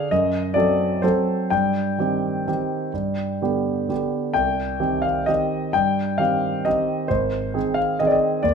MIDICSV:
0, 0, Header, 1, 2, 480
1, 0, Start_track
1, 0, Key_signature, -3, "minor"
1, 0, Tempo, 450789
1, 125, Time_signature, 3, 2, 24, 8
1, 1092, Tempo, 477707
1, 4452, Tempo, 461894
1, 5892, Tempo, 449102
1, 8868, End_track
2, 0, Start_track
2, 0, Title_t, "Grand piano"
2, 0, Program_c, 0, 0
2, 0, Note_on_c, 0, 77, 64
2, 118, Note_off_c, 0, 77, 0
2, 119, Note_on_c, 0, 75, 57
2, 126, Note_on_c, 0, 42, 37
2, 316, Control_c, 0, 64, 127
2, 574, Note_on_c, 0, 74, 59
2, 580, Note_off_c, 0, 42, 0
2, 591, Note_off_c, 0, 75, 0
2, 592, Note_on_c, 0, 54, 29
2, 593, Note_on_c, 0, 60, 28
2, 601, Note_on_c, 0, 69, 30
2, 1049, Note_off_c, 0, 54, 0
2, 1049, Note_off_c, 0, 60, 0
2, 1053, Note_off_c, 0, 69, 0
2, 1082, Note_off_c, 0, 74, 0
2, 1087, Note_on_c, 0, 72, 50
2, 1099, Note_on_c, 0, 54, 26
2, 1103, Note_on_c, 0, 60, 25
2, 1105, Note_on_c, 0, 69, 29
2, 1108, Control_c, 0, 64, 0
2, 1556, Note_off_c, 0, 54, 0
2, 1557, Note_off_c, 0, 60, 0
2, 1558, Note_off_c, 0, 69, 0
2, 1573, Note_on_c, 0, 79, 51
2, 1581, Note_on_c, 0, 43, 34
2, 1590, Note_off_c, 0, 72, 0
2, 1786, Control_c, 0, 64, 127
2, 2047, Note_off_c, 0, 43, 0
2, 2057, Note_on_c, 0, 51, 26
2, 2065, Note_on_c, 0, 60, 26
2, 2071, Note_on_c, 0, 67, 27
2, 2510, Note_off_c, 0, 51, 0
2, 2514, Note_off_c, 0, 60, 0
2, 2517, Note_off_c, 0, 67, 0
2, 2548, Note_on_c, 0, 60, 25
2, 2550, Note_on_c, 0, 51, 26
2, 2560, Note_on_c, 0, 67, 27
2, 2564, Control_c, 0, 64, 0
2, 2983, Note_off_c, 0, 60, 0
2, 2984, Note_off_c, 0, 51, 0
2, 2989, Note_off_c, 0, 67, 0
2, 3011, Note_on_c, 0, 43, 30
2, 3206, Control_c, 0, 64, 127
2, 3480, Note_off_c, 0, 43, 0
2, 3492, Note_on_c, 0, 50, 25
2, 3501, Note_on_c, 0, 59, 24
2, 3502, Note_on_c, 0, 67, 26
2, 3941, Note_off_c, 0, 50, 0
2, 3945, Note_off_c, 0, 59, 0
2, 3946, Note_off_c, 0, 67, 0
2, 3969, Note_on_c, 0, 50, 23
2, 3970, Note_on_c, 0, 59, 23
2, 3976, Note_off_c, 0, 79, 0
2, 3982, Note_on_c, 0, 67, 26
2, 3999, Control_c, 0, 64, 0
2, 4405, Note_off_c, 0, 50, 0
2, 4406, Note_off_c, 0, 59, 0
2, 4412, Note_off_c, 0, 67, 0
2, 4417, Note_on_c, 0, 79, 54
2, 4428, Note_on_c, 0, 36, 31
2, 4668, Control_c, 0, 64, 127
2, 4897, Note_on_c, 0, 51, 24
2, 4899, Note_on_c, 0, 60, 25
2, 4899, Note_on_c, 0, 67, 26
2, 4900, Note_off_c, 0, 36, 0
2, 5126, Note_on_c, 0, 77, 48
2, 5149, Note_off_c, 0, 79, 0
2, 5356, Note_off_c, 0, 51, 0
2, 5357, Note_off_c, 0, 60, 0
2, 5357, Note_off_c, 0, 67, 0
2, 5379, Note_on_c, 0, 75, 51
2, 5392, Note_off_c, 0, 77, 0
2, 5394, Note_on_c, 0, 60, 25
2, 5397, Note_on_c, 0, 51, 22
2, 5403, Note_on_c, 0, 67, 26
2, 5421, Control_c, 0, 64, 0
2, 5843, Note_off_c, 0, 60, 0
2, 5845, Note_off_c, 0, 51, 0
2, 5848, Note_off_c, 0, 67, 0
2, 5868, Note_on_c, 0, 79, 54
2, 5877, Note_off_c, 0, 75, 0
2, 5879, Note_on_c, 0, 43, 30
2, 6128, Control_c, 0, 64, 127
2, 6344, Note_on_c, 0, 77, 54
2, 6349, Note_off_c, 0, 43, 0
2, 6354, Note_on_c, 0, 51, 23
2, 6357, Note_off_c, 0, 79, 0
2, 6364, Note_on_c, 0, 60, 25
2, 6365, Note_on_c, 0, 67, 26
2, 6810, Note_off_c, 0, 51, 0
2, 6815, Note_off_c, 0, 60, 0
2, 6816, Note_off_c, 0, 67, 0
2, 6846, Note_on_c, 0, 75, 52
2, 6848, Note_off_c, 0, 77, 0
2, 6860, Note_on_c, 0, 51, 25
2, 6860, Note_on_c, 0, 60, 27
2, 6865, Note_on_c, 0, 67, 28
2, 6871, Control_c, 0, 64, 0
2, 7301, Note_off_c, 0, 51, 0
2, 7301, Note_off_c, 0, 60, 0
2, 7303, Note_off_c, 0, 67, 0
2, 7310, Note_on_c, 0, 72, 53
2, 7335, Note_on_c, 0, 32, 34
2, 7336, Note_off_c, 0, 75, 0
2, 7524, Control_c, 0, 64, 127
2, 7799, Note_off_c, 0, 32, 0
2, 7800, Note_on_c, 0, 60, 27
2, 7805, Note_on_c, 0, 51, 27
2, 7806, Note_on_c, 0, 68, 28
2, 7830, Control_c, 0, 64, 0
2, 8017, Note_on_c, 0, 77, 56
2, 8041, Note_off_c, 0, 72, 0
2, 8249, Note_off_c, 0, 60, 0
2, 8252, Note_off_c, 0, 51, 0
2, 8252, Note_off_c, 0, 68, 0
2, 8280, Note_off_c, 0, 77, 0
2, 8285, Note_on_c, 0, 75, 49
2, 8295, Note_on_c, 0, 51, 29
2, 8301, Note_on_c, 0, 60, 28
2, 8303, Note_on_c, 0, 68, 31
2, 8363, Note_on_c, 0, 74, 42
2, 8367, Note_off_c, 0, 75, 0
2, 8420, Note_on_c, 0, 75, 47
2, 8443, Note_off_c, 0, 74, 0
2, 8731, Note_off_c, 0, 51, 0
2, 8734, Note_off_c, 0, 60, 0
2, 8735, Note_off_c, 0, 68, 0
2, 8748, Note_on_c, 0, 74, 56
2, 8759, Note_on_c, 0, 39, 38
2, 8762, Note_off_c, 0, 75, 0
2, 8868, Note_off_c, 0, 39, 0
2, 8868, Note_off_c, 0, 74, 0
2, 8868, End_track
0, 0, End_of_file